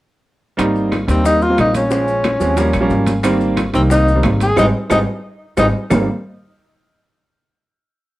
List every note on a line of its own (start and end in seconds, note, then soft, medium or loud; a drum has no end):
0.57 1.05 G#1 medium
0.57 0.93 G3 loud
0.57 0.93 A#3 medium
0.57 0.93 C4 medium
0.57 0.93 D#4 loud
0.57 high bongo medium
0.57 high conga soft
0.57 high timbale loud
0.57 claves medium
0.57 maracas medium
0.75 high bongo soft
0.75 high conga soft
0.75 maracas soft
0.92 high bongo medium
0.92 high conga medium
0.92 high timbale medium
0.92 claves medium
0.92 maracas soft
1.07 1.54 D#2 loud
1.07 1.19 G3 medium
1.07 1.20 A#3 medium
1.07 1.20 C4 medium
1.07 1.25 C4 medium
1.07 1.20 D#4 medium
1.07 high bongo soft
1.07 high conga soft
1.07 high timbale medium
1.07 maracas medium
1.24 1.42 G3 medium
1.24 1.42 A#3 medium
1.24 1.42 C4 medium
1.24 1.42 D#4 medium
1.24 1.44 D#4 loud
1.24 high bongo medium
1.24 high conga soft
1.24 maracas medium
1.42 1.59 F4 loud
1.42 high bongo soft
1.42 high conga soft
1.42 maracas soft
1.49 1.79 G3 medium
1.49 1.79 A#3 medium
1.49 1.79 C4 medium
1.49 1.79 F4 medium
1.58 2.35 A#1 medium
1.58 1.75 D#4 loud
1.58 high bongo soft
1.58 low bongo medium
1.58 high conga medium
1.58 high timbale medium
1.58 claves medium
1.58 maracas soft
1.75 3.05 C#4 medium
1.75 high conga medium
1.75 high timbale medium
1.75 maracas medium
1.90 2.26 F3 medium
1.90 2.26 G#3 medium
1.90 2.26 C#4 medium
1.90 2.26 C5 medium
1.90 high bongo medium
1.90 high conga soft
1.90 maracas medium
2.08 high bongo soft
2.08 high conga soft
2.08 maracas soft
2.24 high bongo medium
2.24 high conga medium
2.24 high timbale medium
2.24 claves medium
2.24 maracas soft
2.40 2.72 D#2 loud
2.40 2.52 F3 medium
2.40 2.52 G#3 medium
2.40 2.53 C4 medium
2.40 2.53 C#4 medium
2.40 high bongo soft
2.40 high conga soft
2.40 maracas medium
2.56 2.74 F3 medium
2.56 2.75 G3 medium
2.56 2.75 A#3 medium
2.56 2.75 C#4 loud
2.56 high bongo medium
2.56 high conga soft
2.56 high timbale medium
2.56 maracas medium
2.73 2.90 A#1 medium
2.73 high bongo soft
2.73 high conga soft
2.73 high timbale medium
2.73 claves medium
2.73 maracas soft
2.80 3.11 F3 medium
2.80 3.11 G3 medium
2.80 3.11 A#3 medium
2.80 3.11 C#4 loud
2.90 3.68 G#1 medium
2.90 high bongo soft
2.90 low bongo medium
2.90 high conga soft
2.90 maracas soft
3.07 high conga medium
3.07 high timbale medium
3.07 maracas medium
3.23 3.59 D#3 loud
3.23 3.59 G3 medium
3.23 3.59 A#3 medium
3.23 3.59 C4 loud
3.23 high bongo medium
3.23 high conga soft
3.23 high timbale loud
3.23 claves medium
3.23 maracas medium
3.41 high bongo soft
3.41 high conga soft
3.41 maracas soft
3.57 high bongo medium
3.57 high conga medium
3.57 high timbale medium
3.57 claves medium
3.57 maracas soft
3.73 4.20 C2 loud
3.73 3.85 D#3 medium
3.73 3.85 G3 medium
3.73 3.86 A#3 medium
3.73 3.82 C4 medium
3.73 3.86 D#4 medium
3.73 high bongo soft
3.73 high conga soft
3.73 high timbale medium
3.73 maracas medium
3.89 4.08 D#3 medium
3.89 4.08 G3 medium
3.89 4.08 A#3 medium
3.89 4.08 C4 medium
3.89 4.22 D#4 medium
3.89 high bongo medium
3.89 high conga soft
3.89 maracas medium
4.07 high bongo soft
4.07 high conga soft
4.07 maracas soft
4.15 4.44 D#3 medium
4.15 4.45 G3 medium
4.15 4.45 A#3 medium
4.15 4.45 C4 medium
4.23 4.55 G#1 loud
4.23 high bongo soft
4.23 low bongo medium
4.23 high conga medium
4.23 high timbale medium
4.23 low timbale medium
4.23 claves medium
4.23 maracas soft
4.40 4.57 G#4 medium
4.40 high conga medium
4.40 high timbale medium
4.40 maracas medium
4.57 4.70 G#1 medium
4.57 4.68 G3 loud
4.57 4.68 G#3 loud
4.57 4.68 C4 loud
4.57 4.66 D#4 medium
4.57 high bongo medium
4.57 high conga loud
4.57 high timbale loud
4.57 claves medium
4.57 maracas medium
4.90 5.03 G#1 loud
4.90 5.01 G3 medium
4.90 5.01 G#3 medium
4.90 5.01 C4 medium
4.90 5.00 D#4 medium
4.90 high bongo loud
4.90 high conga medium
4.90 high timbale medium
4.90 claves loud
4.90 maracas medium
5.57 5.70 G#1 loud
5.57 5.68 G3 medium
5.57 5.68 G#3 medium
5.57 5.68 C4 medium
5.57 5.66 D#4 medium
5.57 high bongo medium
5.57 high conga medium
5.57 high timbale loud
5.57 claves medium
5.57 maracas medium
5.90 6.06 G#1 medium
5.90 6.06 D#3 medium
5.90 6.06 G3 medium
5.90 6.06 A#3 medium
5.90 6.06 C4 medium
5.90 low bongo loud
5.90 low conga loud
5.90 low timbale loud
5.90 claves medium
5.90 maracas medium